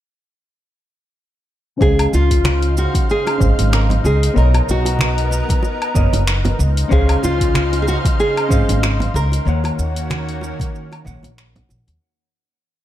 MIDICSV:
0, 0, Header, 1, 6, 480
1, 0, Start_track
1, 0, Key_signature, -5, "major"
1, 0, Tempo, 638298
1, 1359, Time_signature, 4, 2, 24, 8
1, 9659, End_track
2, 0, Start_track
2, 0, Title_t, "Hollow-body jazz guitar"
2, 0, Program_c, 0, 26
2, 1336, Note_on_c, 0, 61, 80
2, 1345, Note_on_c, 0, 72, 73
2, 1355, Note_on_c, 0, 75, 76
2, 1366, Note_on_c, 0, 77, 86
2, 2522, Note_off_c, 0, 61, 0
2, 2527, Note_off_c, 0, 72, 0
2, 2532, Note_off_c, 0, 75, 0
2, 2537, Note_off_c, 0, 77, 0
2, 2544, Note_on_c, 0, 61, 60
2, 2554, Note_on_c, 0, 72, 58
2, 2560, Note_on_c, 0, 75, 58
2, 2573, Note_on_c, 0, 77, 65
2, 3246, Note_off_c, 0, 61, 0
2, 3251, Note_off_c, 0, 72, 0
2, 3254, Note_off_c, 0, 75, 0
2, 3261, Note_off_c, 0, 77, 0
2, 3262, Note_on_c, 0, 59, 80
2, 3272, Note_on_c, 0, 70, 77
2, 3279, Note_on_c, 0, 73, 75
2, 3288, Note_on_c, 0, 75, 93
2, 4445, Note_off_c, 0, 59, 0
2, 4450, Note_off_c, 0, 70, 0
2, 4454, Note_off_c, 0, 73, 0
2, 4458, Note_off_c, 0, 75, 0
2, 4470, Note_on_c, 0, 59, 78
2, 4476, Note_on_c, 0, 70, 67
2, 4481, Note_on_c, 0, 73, 63
2, 4484, Note_on_c, 0, 75, 85
2, 4640, Note_off_c, 0, 59, 0
2, 4643, Note_off_c, 0, 70, 0
2, 4644, Note_off_c, 0, 73, 0
2, 4647, Note_off_c, 0, 75, 0
2, 5182, Note_on_c, 0, 61, 91
2, 5191, Note_on_c, 0, 72, 77
2, 5200, Note_on_c, 0, 75, 79
2, 5207, Note_on_c, 0, 77, 93
2, 6365, Note_off_c, 0, 61, 0
2, 6370, Note_off_c, 0, 72, 0
2, 6374, Note_off_c, 0, 75, 0
2, 6378, Note_off_c, 0, 77, 0
2, 6383, Note_on_c, 0, 61, 69
2, 6392, Note_on_c, 0, 72, 61
2, 6400, Note_on_c, 0, 75, 61
2, 6411, Note_on_c, 0, 77, 70
2, 7086, Note_off_c, 0, 61, 0
2, 7090, Note_off_c, 0, 72, 0
2, 7094, Note_off_c, 0, 75, 0
2, 7100, Note_off_c, 0, 77, 0
2, 7108, Note_on_c, 0, 51, 91
2, 7114, Note_on_c, 0, 58, 78
2, 7121, Note_on_c, 0, 73, 81
2, 7134, Note_on_c, 0, 78, 93
2, 8288, Note_off_c, 0, 51, 0
2, 8291, Note_off_c, 0, 58, 0
2, 8295, Note_off_c, 0, 73, 0
2, 8301, Note_off_c, 0, 78, 0
2, 8306, Note_on_c, 0, 51, 78
2, 8311, Note_on_c, 0, 58, 70
2, 8316, Note_on_c, 0, 73, 73
2, 8321, Note_on_c, 0, 78, 93
2, 8478, Note_off_c, 0, 51, 0
2, 8480, Note_off_c, 0, 58, 0
2, 8483, Note_off_c, 0, 73, 0
2, 8485, Note_off_c, 0, 78, 0
2, 9659, End_track
3, 0, Start_track
3, 0, Title_t, "Nylon-string guitar"
3, 0, Program_c, 1, 24
3, 1367, Note_on_c, 1, 68, 92
3, 1609, Note_off_c, 1, 68, 0
3, 1612, Note_on_c, 1, 65, 84
3, 2089, Note_off_c, 1, 65, 0
3, 2092, Note_on_c, 1, 66, 87
3, 2309, Note_off_c, 1, 66, 0
3, 2338, Note_on_c, 1, 68, 94
3, 2808, Note_off_c, 1, 68, 0
3, 2811, Note_on_c, 1, 70, 98
3, 2874, Note_off_c, 1, 70, 0
3, 3052, Note_on_c, 1, 68, 84
3, 3288, Note_off_c, 1, 68, 0
3, 3291, Note_on_c, 1, 70, 97
3, 3532, Note_off_c, 1, 70, 0
3, 3540, Note_on_c, 1, 66, 81
3, 4940, Note_off_c, 1, 66, 0
3, 5205, Note_on_c, 1, 68, 85
3, 5444, Note_off_c, 1, 68, 0
3, 5447, Note_on_c, 1, 65, 85
3, 5878, Note_off_c, 1, 65, 0
3, 5881, Note_on_c, 1, 68, 62
3, 5923, Note_off_c, 1, 68, 0
3, 5927, Note_on_c, 1, 66, 84
3, 5991, Note_off_c, 1, 66, 0
3, 6166, Note_on_c, 1, 68, 92
3, 6884, Note_off_c, 1, 68, 0
3, 6887, Note_on_c, 1, 70, 90
3, 8533, Note_off_c, 1, 70, 0
3, 9659, End_track
4, 0, Start_track
4, 0, Title_t, "Analog synth pad"
4, 0, Program_c, 2, 89
4, 1361, Note_on_c, 2, 77, 92
4, 1362, Note_on_c, 2, 49, 80
4, 1362, Note_on_c, 2, 72, 76
4, 1363, Note_on_c, 2, 63, 72
4, 3261, Note_off_c, 2, 77, 0
4, 3262, Note_off_c, 2, 49, 0
4, 3262, Note_off_c, 2, 72, 0
4, 3284, Note_on_c, 2, 59, 75
4, 3285, Note_on_c, 2, 70, 79
4, 4931, Note_off_c, 2, 63, 0
4, 4945, Note_off_c, 2, 59, 0
4, 4945, Note_off_c, 2, 70, 0
4, 4956, Note_on_c, 2, 63, 75
4, 4957, Note_on_c, 2, 77, 90
4, 4958, Note_on_c, 2, 49, 87
4, 4958, Note_on_c, 2, 72, 78
4, 7096, Note_off_c, 2, 63, 0
4, 7096, Note_off_c, 2, 77, 0
4, 7097, Note_off_c, 2, 49, 0
4, 7097, Note_off_c, 2, 72, 0
4, 7111, Note_on_c, 2, 61, 73
4, 7112, Note_on_c, 2, 58, 75
4, 7112, Note_on_c, 2, 66, 92
4, 7114, Note_on_c, 2, 51, 76
4, 9016, Note_off_c, 2, 61, 0
4, 9016, Note_off_c, 2, 66, 0
4, 9017, Note_off_c, 2, 51, 0
4, 9017, Note_off_c, 2, 58, 0
4, 9659, End_track
5, 0, Start_track
5, 0, Title_t, "Upright bass"
5, 0, Program_c, 3, 32
5, 1361, Note_on_c, 3, 37, 92
5, 1527, Note_off_c, 3, 37, 0
5, 1602, Note_on_c, 3, 37, 75
5, 2141, Note_off_c, 3, 37, 0
5, 2560, Note_on_c, 3, 32, 90
5, 2648, Note_off_c, 3, 32, 0
5, 2696, Note_on_c, 3, 32, 76
5, 2982, Note_off_c, 3, 32, 0
5, 3039, Note_on_c, 3, 37, 88
5, 3206, Note_off_c, 3, 37, 0
5, 3279, Note_on_c, 3, 35, 94
5, 3446, Note_off_c, 3, 35, 0
5, 3521, Note_on_c, 3, 35, 69
5, 4060, Note_off_c, 3, 35, 0
5, 4478, Note_on_c, 3, 30, 84
5, 4567, Note_off_c, 3, 30, 0
5, 4611, Note_on_c, 3, 30, 78
5, 4900, Note_off_c, 3, 30, 0
5, 4957, Note_on_c, 3, 37, 94
5, 5125, Note_off_c, 3, 37, 0
5, 5198, Note_on_c, 3, 37, 91
5, 5366, Note_off_c, 3, 37, 0
5, 5437, Note_on_c, 3, 37, 73
5, 5978, Note_off_c, 3, 37, 0
5, 6396, Note_on_c, 3, 32, 89
5, 6486, Note_off_c, 3, 32, 0
5, 6531, Note_on_c, 3, 32, 77
5, 6820, Note_off_c, 3, 32, 0
5, 6875, Note_on_c, 3, 37, 97
5, 7044, Note_off_c, 3, 37, 0
5, 7118, Note_on_c, 3, 39, 93
5, 7286, Note_off_c, 3, 39, 0
5, 7358, Note_on_c, 3, 39, 75
5, 7899, Note_off_c, 3, 39, 0
5, 8317, Note_on_c, 3, 34, 89
5, 8406, Note_off_c, 3, 34, 0
5, 8452, Note_on_c, 3, 34, 81
5, 8740, Note_off_c, 3, 34, 0
5, 8798, Note_on_c, 3, 34, 90
5, 8887, Note_off_c, 3, 34, 0
5, 8930, Note_on_c, 3, 39, 93
5, 9001, Note_off_c, 3, 39, 0
5, 9659, End_track
6, 0, Start_track
6, 0, Title_t, "Drums"
6, 1359, Note_on_c, 9, 36, 104
6, 1364, Note_on_c, 9, 82, 29
6, 1435, Note_off_c, 9, 36, 0
6, 1439, Note_off_c, 9, 82, 0
6, 1498, Note_on_c, 9, 46, 45
6, 1498, Note_on_c, 9, 77, 75
6, 1574, Note_off_c, 9, 46, 0
6, 1574, Note_off_c, 9, 77, 0
6, 1605, Note_on_c, 9, 82, 64
6, 1612, Note_on_c, 9, 60, 50
6, 1680, Note_off_c, 9, 82, 0
6, 1687, Note_off_c, 9, 60, 0
6, 1735, Note_on_c, 9, 36, 55
6, 1737, Note_on_c, 9, 46, 53
6, 1740, Note_on_c, 9, 82, 39
6, 1810, Note_off_c, 9, 36, 0
6, 1813, Note_off_c, 9, 46, 0
6, 1816, Note_off_c, 9, 82, 0
6, 1838, Note_on_c, 9, 63, 88
6, 1842, Note_on_c, 9, 26, 99
6, 1842, Note_on_c, 9, 60, 82
6, 1844, Note_on_c, 9, 82, 31
6, 1913, Note_off_c, 9, 63, 0
6, 1917, Note_off_c, 9, 26, 0
6, 1917, Note_off_c, 9, 60, 0
6, 1920, Note_off_c, 9, 82, 0
6, 1974, Note_on_c, 9, 46, 40
6, 2049, Note_off_c, 9, 46, 0
6, 2085, Note_on_c, 9, 82, 68
6, 2160, Note_off_c, 9, 82, 0
6, 2215, Note_on_c, 9, 36, 98
6, 2215, Note_on_c, 9, 60, 51
6, 2216, Note_on_c, 9, 63, 59
6, 2219, Note_on_c, 9, 46, 52
6, 2221, Note_on_c, 9, 82, 41
6, 2290, Note_off_c, 9, 36, 0
6, 2291, Note_off_c, 9, 60, 0
6, 2291, Note_off_c, 9, 63, 0
6, 2294, Note_off_c, 9, 46, 0
6, 2297, Note_off_c, 9, 82, 0
6, 2328, Note_on_c, 9, 82, 31
6, 2403, Note_off_c, 9, 82, 0
6, 2457, Note_on_c, 9, 60, 83
6, 2461, Note_on_c, 9, 46, 28
6, 2461, Note_on_c, 9, 77, 68
6, 2532, Note_off_c, 9, 60, 0
6, 2536, Note_off_c, 9, 46, 0
6, 2536, Note_off_c, 9, 77, 0
6, 2560, Note_on_c, 9, 36, 82
6, 2567, Note_on_c, 9, 82, 75
6, 2635, Note_off_c, 9, 36, 0
6, 2642, Note_off_c, 9, 82, 0
6, 2697, Note_on_c, 9, 64, 65
6, 2698, Note_on_c, 9, 46, 52
6, 2701, Note_on_c, 9, 82, 42
6, 2773, Note_off_c, 9, 64, 0
6, 2774, Note_off_c, 9, 46, 0
6, 2776, Note_off_c, 9, 82, 0
6, 2799, Note_on_c, 9, 60, 50
6, 2805, Note_on_c, 9, 26, 102
6, 2808, Note_on_c, 9, 82, 32
6, 2875, Note_off_c, 9, 60, 0
6, 2880, Note_off_c, 9, 26, 0
6, 2883, Note_off_c, 9, 82, 0
6, 2932, Note_on_c, 9, 64, 82
6, 2941, Note_on_c, 9, 46, 30
6, 3007, Note_off_c, 9, 64, 0
6, 3017, Note_off_c, 9, 46, 0
6, 3044, Note_on_c, 9, 60, 75
6, 3045, Note_on_c, 9, 82, 68
6, 3119, Note_off_c, 9, 60, 0
6, 3120, Note_off_c, 9, 82, 0
6, 3182, Note_on_c, 9, 46, 54
6, 3185, Note_on_c, 9, 82, 38
6, 3257, Note_off_c, 9, 46, 0
6, 3260, Note_off_c, 9, 82, 0
6, 3287, Note_on_c, 9, 82, 32
6, 3362, Note_off_c, 9, 82, 0
6, 3414, Note_on_c, 9, 60, 53
6, 3418, Note_on_c, 9, 46, 44
6, 3418, Note_on_c, 9, 77, 71
6, 3489, Note_off_c, 9, 60, 0
6, 3493, Note_off_c, 9, 46, 0
6, 3493, Note_off_c, 9, 77, 0
6, 3526, Note_on_c, 9, 82, 72
6, 3601, Note_off_c, 9, 82, 0
6, 3650, Note_on_c, 9, 60, 77
6, 3656, Note_on_c, 9, 46, 53
6, 3659, Note_on_c, 9, 82, 42
6, 3725, Note_off_c, 9, 60, 0
6, 3731, Note_off_c, 9, 46, 0
6, 3734, Note_off_c, 9, 82, 0
6, 3751, Note_on_c, 9, 63, 94
6, 3765, Note_on_c, 9, 26, 103
6, 3768, Note_on_c, 9, 82, 32
6, 3826, Note_off_c, 9, 63, 0
6, 3840, Note_off_c, 9, 26, 0
6, 3843, Note_off_c, 9, 82, 0
6, 3895, Note_on_c, 9, 46, 37
6, 3970, Note_off_c, 9, 46, 0
6, 3994, Note_on_c, 9, 60, 51
6, 4004, Note_on_c, 9, 82, 74
6, 4070, Note_off_c, 9, 60, 0
6, 4079, Note_off_c, 9, 82, 0
6, 4128, Note_on_c, 9, 63, 66
6, 4133, Note_on_c, 9, 36, 98
6, 4136, Note_on_c, 9, 46, 53
6, 4139, Note_on_c, 9, 82, 44
6, 4204, Note_off_c, 9, 63, 0
6, 4208, Note_off_c, 9, 36, 0
6, 4211, Note_off_c, 9, 46, 0
6, 4214, Note_off_c, 9, 82, 0
6, 4231, Note_on_c, 9, 60, 72
6, 4243, Note_on_c, 9, 82, 32
6, 4306, Note_off_c, 9, 60, 0
6, 4319, Note_off_c, 9, 82, 0
6, 4375, Note_on_c, 9, 46, 28
6, 4375, Note_on_c, 9, 77, 69
6, 4450, Note_off_c, 9, 46, 0
6, 4450, Note_off_c, 9, 77, 0
6, 4478, Note_on_c, 9, 36, 96
6, 4479, Note_on_c, 9, 82, 74
6, 4553, Note_off_c, 9, 36, 0
6, 4554, Note_off_c, 9, 82, 0
6, 4609, Note_on_c, 9, 64, 74
6, 4612, Note_on_c, 9, 60, 44
6, 4613, Note_on_c, 9, 46, 51
6, 4616, Note_on_c, 9, 82, 41
6, 4684, Note_off_c, 9, 64, 0
6, 4687, Note_off_c, 9, 60, 0
6, 4688, Note_off_c, 9, 46, 0
6, 4691, Note_off_c, 9, 82, 0
6, 4718, Note_on_c, 9, 26, 105
6, 4721, Note_on_c, 9, 82, 35
6, 4794, Note_off_c, 9, 26, 0
6, 4796, Note_off_c, 9, 82, 0
6, 4848, Note_on_c, 9, 60, 73
6, 4851, Note_on_c, 9, 64, 88
6, 4853, Note_on_c, 9, 46, 30
6, 4923, Note_off_c, 9, 60, 0
6, 4926, Note_off_c, 9, 64, 0
6, 4928, Note_off_c, 9, 46, 0
6, 4962, Note_on_c, 9, 82, 78
6, 5037, Note_off_c, 9, 82, 0
6, 5093, Note_on_c, 9, 46, 51
6, 5096, Note_on_c, 9, 82, 39
6, 5168, Note_off_c, 9, 46, 0
6, 5171, Note_off_c, 9, 82, 0
6, 5197, Note_on_c, 9, 36, 108
6, 5200, Note_on_c, 9, 60, 51
6, 5201, Note_on_c, 9, 82, 31
6, 5273, Note_off_c, 9, 36, 0
6, 5275, Note_off_c, 9, 60, 0
6, 5276, Note_off_c, 9, 82, 0
6, 5332, Note_on_c, 9, 46, 39
6, 5332, Note_on_c, 9, 77, 68
6, 5408, Note_off_c, 9, 46, 0
6, 5408, Note_off_c, 9, 77, 0
6, 5437, Note_on_c, 9, 60, 72
6, 5443, Note_on_c, 9, 82, 77
6, 5512, Note_off_c, 9, 60, 0
6, 5518, Note_off_c, 9, 82, 0
6, 5572, Note_on_c, 9, 36, 63
6, 5573, Note_on_c, 9, 46, 52
6, 5576, Note_on_c, 9, 82, 43
6, 5647, Note_off_c, 9, 36, 0
6, 5649, Note_off_c, 9, 46, 0
6, 5652, Note_off_c, 9, 82, 0
6, 5673, Note_on_c, 9, 63, 90
6, 5679, Note_on_c, 9, 26, 96
6, 5682, Note_on_c, 9, 82, 31
6, 5748, Note_off_c, 9, 63, 0
6, 5755, Note_off_c, 9, 26, 0
6, 5757, Note_off_c, 9, 82, 0
6, 5813, Note_on_c, 9, 46, 39
6, 5813, Note_on_c, 9, 60, 54
6, 5888, Note_off_c, 9, 46, 0
6, 5888, Note_off_c, 9, 60, 0
6, 5924, Note_on_c, 9, 82, 71
6, 5999, Note_off_c, 9, 82, 0
6, 6051, Note_on_c, 9, 36, 103
6, 6057, Note_on_c, 9, 46, 49
6, 6058, Note_on_c, 9, 60, 76
6, 6060, Note_on_c, 9, 82, 43
6, 6061, Note_on_c, 9, 63, 56
6, 6127, Note_off_c, 9, 36, 0
6, 6132, Note_off_c, 9, 46, 0
6, 6133, Note_off_c, 9, 60, 0
6, 6135, Note_off_c, 9, 82, 0
6, 6136, Note_off_c, 9, 63, 0
6, 6163, Note_on_c, 9, 82, 34
6, 6239, Note_off_c, 9, 82, 0
6, 6297, Note_on_c, 9, 46, 29
6, 6297, Note_on_c, 9, 77, 70
6, 6373, Note_off_c, 9, 46, 0
6, 6373, Note_off_c, 9, 77, 0
6, 6396, Note_on_c, 9, 36, 97
6, 6400, Note_on_c, 9, 60, 47
6, 6403, Note_on_c, 9, 82, 78
6, 6471, Note_off_c, 9, 36, 0
6, 6475, Note_off_c, 9, 60, 0
6, 6478, Note_off_c, 9, 82, 0
6, 6535, Note_on_c, 9, 64, 69
6, 6536, Note_on_c, 9, 46, 51
6, 6539, Note_on_c, 9, 82, 44
6, 6610, Note_off_c, 9, 64, 0
6, 6611, Note_off_c, 9, 46, 0
6, 6614, Note_off_c, 9, 82, 0
6, 6638, Note_on_c, 9, 60, 74
6, 6642, Note_on_c, 9, 26, 106
6, 6645, Note_on_c, 9, 82, 37
6, 6713, Note_off_c, 9, 60, 0
6, 6718, Note_off_c, 9, 26, 0
6, 6720, Note_off_c, 9, 82, 0
6, 6770, Note_on_c, 9, 64, 86
6, 6781, Note_on_c, 9, 46, 28
6, 6845, Note_off_c, 9, 64, 0
6, 6856, Note_off_c, 9, 46, 0
6, 6887, Note_on_c, 9, 82, 82
6, 6962, Note_off_c, 9, 82, 0
6, 7007, Note_on_c, 9, 60, 52
6, 7017, Note_on_c, 9, 46, 49
6, 7020, Note_on_c, 9, 82, 45
6, 7082, Note_off_c, 9, 60, 0
6, 7092, Note_off_c, 9, 46, 0
6, 7095, Note_off_c, 9, 82, 0
6, 7125, Note_on_c, 9, 82, 31
6, 7200, Note_off_c, 9, 82, 0
6, 7248, Note_on_c, 9, 60, 71
6, 7256, Note_on_c, 9, 46, 37
6, 7256, Note_on_c, 9, 77, 69
6, 7323, Note_off_c, 9, 60, 0
6, 7331, Note_off_c, 9, 46, 0
6, 7331, Note_off_c, 9, 77, 0
6, 7362, Note_on_c, 9, 82, 70
6, 7437, Note_off_c, 9, 82, 0
6, 7493, Note_on_c, 9, 46, 52
6, 7496, Note_on_c, 9, 82, 46
6, 7568, Note_off_c, 9, 46, 0
6, 7571, Note_off_c, 9, 82, 0
6, 7596, Note_on_c, 9, 60, 49
6, 7596, Note_on_c, 9, 63, 90
6, 7601, Note_on_c, 9, 26, 94
6, 7604, Note_on_c, 9, 82, 30
6, 7671, Note_off_c, 9, 60, 0
6, 7672, Note_off_c, 9, 63, 0
6, 7676, Note_off_c, 9, 26, 0
6, 7679, Note_off_c, 9, 82, 0
6, 7735, Note_on_c, 9, 46, 38
6, 7810, Note_off_c, 9, 46, 0
6, 7831, Note_on_c, 9, 60, 76
6, 7846, Note_on_c, 9, 82, 75
6, 7906, Note_off_c, 9, 60, 0
6, 7921, Note_off_c, 9, 82, 0
6, 7968, Note_on_c, 9, 63, 71
6, 7970, Note_on_c, 9, 36, 103
6, 7979, Note_on_c, 9, 46, 52
6, 7982, Note_on_c, 9, 82, 44
6, 8043, Note_off_c, 9, 63, 0
6, 8045, Note_off_c, 9, 36, 0
6, 8054, Note_off_c, 9, 46, 0
6, 8057, Note_off_c, 9, 82, 0
6, 8086, Note_on_c, 9, 82, 33
6, 8161, Note_off_c, 9, 82, 0
6, 8209, Note_on_c, 9, 60, 52
6, 8216, Note_on_c, 9, 46, 26
6, 8216, Note_on_c, 9, 77, 65
6, 8284, Note_off_c, 9, 60, 0
6, 8291, Note_off_c, 9, 46, 0
6, 8291, Note_off_c, 9, 77, 0
6, 8316, Note_on_c, 9, 36, 90
6, 8325, Note_on_c, 9, 82, 77
6, 8391, Note_off_c, 9, 36, 0
6, 8400, Note_off_c, 9, 82, 0
6, 8443, Note_on_c, 9, 60, 61
6, 8448, Note_on_c, 9, 64, 69
6, 8455, Note_on_c, 9, 46, 49
6, 8458, Note_on_c, 9, 82, 45
6, 8518, Note_off_c, 9, 60, 0
6, 8523, Note_off_c, 9, 64, 0
6, 8530, Note_off_c, 9, 46, 0
6, 8533, Note_off_c, 9, 82, 0
6, 8559, Note_on_c, 9, 26, 101
6, 8562, Note_on_c, 9, 82, 35
6, 8634, Note_off_c, 9, 26, 0
6, 8637, Note_off_c, 9, 82, 0
6, 8691, Note_on_c, 9, 64, 95
6, 8694, Note_on_c, 9, 46, 28
6, 8766, Note_off_c, 9, 64, 0
6, 8769, Note_off_c, 9, 46, 0
6, 8791, Note_on_c, 9, 60, 52
6, 8802, Note_on_c, 9, 82, 74
6, 8866, Note_off_c, 9, 60, 0
6, 8877, Note_off_c, 9, 82, 0
6, 8933, Note_on_c, 9, 46, 46
6, 8936, Note_on_c, 9, 82, 44
6, 9008, Note_off_c, 9, 46, 0
6, 9011, Note_off_c, 9, 82, 0
6, 9659, End_track
0, 0, End_of_file